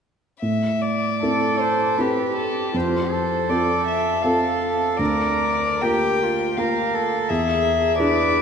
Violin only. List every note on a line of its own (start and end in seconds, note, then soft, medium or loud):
0.40 0.83 E5 soft
0.82 1.62 D5 soft
1.60 1.99 C5 soft
1.98 2.36 B4 soft
2.37 2.78 A4 soft
2.76 3.51 C5 soft
3.50 3.86 D5 soft
3.87 4.24 E5 soft
4.22 4.98 F5 soft
4.97 5.83 D5 soft
5.81 6.58 G5 soft
6.57 7.30 F5 soft
7.29 7.98 E5 soft
7.99 8.42 D5 medium